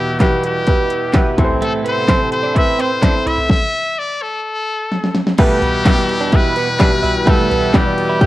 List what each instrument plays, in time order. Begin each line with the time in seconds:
Already playing: grand piano E2 B2 B3 E4 G4 B4, analog synth pad B2 E3 G3 E4 G4, trumpet G4
0.20 grand piano B3 E4 G4 B4, trumpet G4, kick, snare, clap, closed hi-hat
0.44 trumpet G4, closed hi-hat
0.67 grand piano B3 E4 G4 B4, kick, closed hi-hat
0.90 closed hi-hat
1.13 grand piano B3 E4 G4 B4, kick, snare, clap, closed hi-hat
1.37 grand piano A2 E3 C4 E4 A4 B4, analog synth pad C3 A3 A4, kick, closed hi-hat, floor tom
1.45 grand piano C5
1.50 floor tom
1.62 clean electric guitar A3, trumpet A4, closed hi-hat
1.84 clean electric guitar B3, trumpet C5, closed hi-hat
2.08 clean electric guitar C4, grand piano C4 E4 A4 C5, kick, snare, clap, closed hi-hat
2.32 trumpet C5, closed hi-hat
2.43 clean electric guitar D4
2.55 grand piano C4 E4 A4 B4, clean electric guitar E4, trumpet E5, kick, closed hi-hat
2.79 clean electric guitar C4, trumpet C5, closed hi-hat
3.02 grand piano C4 E4 A4 C5, clean electric guitar D4, kick, snare, clap, closed hi-hat
3.26 clean electric guitar E4, trumpet E5, closed hi-hat, floor tom
3.38 floor tom
3.50 trumpet E5, kick, snare
3.99 trumpet D5
4.22 trumpet A4
4.92 snare
5.04 snare
5.15 snare
5.27 snare
5.38 grand piano E2 B2 G3 B3 E4 G4 B4, analog synth pad B2 E3 G3 E4 G4, clean electric guitar A3, trumpet G4, kick, crash, ride
5.62 clean electric guitar B3, floor tom, ride
5.85 grand piano G3 B3 E4 G4 B4, clean electric guitar B3, kick, snare, clap, ride
6.09 ride
6.21 clean electric guitar D4
6.32 grand piano G3 B3 E4 G4 B4, clean electric guitar E4, trumpet B4, kick, ride
6.56 clean electric guitar B3, ride
6.79 grand piano G3 B3 E4 G4 B4, clean electric guitar D4, kick, snare, clap, ride
7.03 clean electric guitar E4, floor tom, ride
7.26 grand piano E2 B2 G3 B3 E4 G4 B4, clean electric guitar A3, kick, ride
7.30 trumpet A4
7.50 clean electric guitar B3, floor tom, ride
7.74 grand piano G3 B3 E4 G4 D5, clean electric guitar D4, trumpet G4, kick, snare, clap, ride
7.98 ride
8.09 clean electric guitar E4
8.21 grand piano G3 B3 E4 G4 B4, clean electric guitar G4, kick, ride